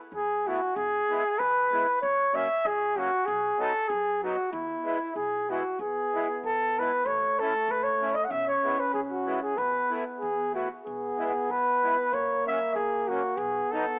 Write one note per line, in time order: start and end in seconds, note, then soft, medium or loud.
0.12 0.53 E2 medium
0.12 0.48 G#4 medium
0.46 0.59 A3 soft
0.46 0.60 B3 soft
0.46 0.60 E4 soft
0.46 0.77 F#4 medium
0.76 0.98 E1 medium
0.76 1.40 G#4 medium
1.09 1.23 G#3 medium
1.09 1.23 B3 soft
1.09 1.24 E4 medium
1.39 1.81 C#2 medium
1.39 2.01 B4 medium
1.71 1.86 G#3 soft
1.71 1.86 B3 soft
1.71 1.86 E4 medium
2.02 2.24 F#1 medium
2.02 2.36 C#5 medium
2.32 2.47 F#3 soft
2.32 2.48 A#3 soft
2.32 2.48 C#4 medium
2.32 2.68 E5 medium
2.65 3.05 C#2 medium
2.65 3.00 G#4 medium
2.95 3.09 F#3 soft
2.95 3.10 A#3 medium
2.95 3.11 C#4 soft
2.95 3.27 F#4 medium
3.26 3.49 B1 medium
3.26 3.62 G#4 medium
3.58 3.72 F#3 medium
3.58 3.73 B3 medium
3.58 3.73 D#4 medium
3.58 3.90 A4 medium
3.88 4.31 F#2 medium
3.88 4.22 G#4 medium
4.22 4.36 F#3 soft
4.22 4.36 B3 soft
4.22 4.37 D#4 medium
4.22 4.51 F#4 medium
4.52 4.74 E2 medium
4.52 5.12 E4 medium
4.83 4.98 G#3 medium
4.83 4.98 B3 soft
4.83 4.99 E4 medium
5.16 5.57 B1 medium
5.16 5.51 G#4 medium
5.49 5.63 G#3 soft
5.49 5.63 B3 soft
5.49 5.63 E4 medium
5.49 5.80 F#4 medium
5.78 6.01 E2 medium
5.78 7.06 B3 medium
5.78 6.40 G#4 medium
6.14 6.27 G#3 soft
6.14 6.27 B3 soft
6.14 6.28 E4 medium
6.43 6.84 B1 medium
6.43 6.80 A4 medium
6.78 6.91 G#3 soft
6.78 6.91 B3 soft
6.78 6.92 E4 medium
6.78 7.08 B4 medium
7.05 7.27 A1 medium
7.05 8.28 A3 medium
7.05 7.41 C#5 medium
7.39 7.53 A3 medium
7.39 7.53 C#4 soft
7.39 7.54 E4 medium
7.39 7.72 A4 medium
7.68 8.09 F#1 medium
7.68 7.85 B4 medium
7.83 8.16 C#5 medium
8.01 8.14 A3 soft
8.01 8.15 C#4 soft
8.01 8.15 E4 medium
8.15 8.26 D#5 medium
8.24 8.32 F#5 medium
8.29 8.52 E1 medium
8.29 9.57 C#4 medium
8.29 8.47 E5 medium
8.48 8.81 C#5 medium
8.63 8.77 G#3 medium
8.63 8.77 B3 soft
8.63 8.78 E4 medium
8.79 8.93 B4 medium
8.94 9.35 B1 medium
8.94 9.01 G#4 medium
9.11 9.40 F#4 medium
9.26 9.40 G#3 soft
9.26 9.40 B3 soft
9.26 9.40 E4 medium
9.43 9.59 G#4 medium
9.55 9.79 A1 medium
9.55 10.54 B3 medium
9.55 9.95 B4 medium
9.90 10.04 A3 soft
9.90 10.04 B3 soft
9.90 10.04 E4 medium
10.20 10.64 E2 medium
10.20 10.52 G#4 medium
10.52 10.68 A3 soft
10.52 10.69 B3 soft
10.52 10.68 E4 soft
10.52 10.69 F#4 medium
10.85 11.08 E1 medium
10.85 12.13 B3 medium
10.85 11.52 G#4 medium
11.17 11.32 G#3 soft
11.17 11.32 B3 soft
11.17 11.33 E4 soft
11.50 11.90 C#2 medium
11.50 12.15 B4 medium
11.82 11.96 G#3 soft
11.82 11.96 B3 soft
11.82 11.96 E4 soft
12.12 12.34 F#1 medium
12.12 13.38 A#3 medium
12.12 12.46 C#5 medium
12.46 12.59 F#3 soft
12.46 12.59 A#3 soft
12.46 12.60 C#4 medium
12.46 12.74 E5 medium
12.75 13.16 C#2 medium
12.75 13.09 G#4 medium
13.08 13.22 F#3 soft
13.08 13.22 A#3 soft
13.08 13.23 C#4 soft
13.08 13.39 F#4 medium
13.36 13.59 B1 medium
13.36 13.99 B3 medium
13.36 13.73 G#4 medium
13.71 13.85 F#3 soft
13.71 13.85 B3 medium
13.71 13.86 D#4 medium
13.71 13.99 A4 medium